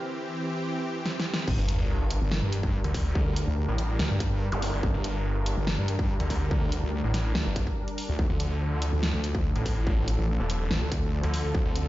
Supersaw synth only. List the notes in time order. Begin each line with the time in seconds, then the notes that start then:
Already playing: E3 C4 G4
1.48 G3 D4 A#4
8.19 F3 A4